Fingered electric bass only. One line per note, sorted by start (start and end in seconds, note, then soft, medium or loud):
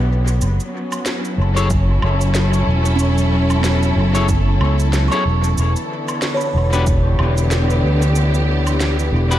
0.00 0.39 B1 medium
0.41 0.58 F#1 loud
1.38 2.00 F#1 loud
2.02 2.65 F#1 loud
2.67 3.94 E1 medium
3.96 4.58 F#1 loud
4.61 5.08 C#2 loud
5.25 5.54 E1 medium
5.58 5.74 E1 loud
6.54 7.16 E1 loud
7.19 7.81 E1 loud
7.83 9.10 D2 medium
9.12 9.39 E1 loud